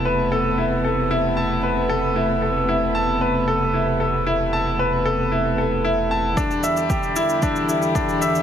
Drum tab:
SH |----------------|----------------|----------------|xxxxxxxxxxxxxxxx|
BD |----------------|----------------|----------------|o---o---o---o---|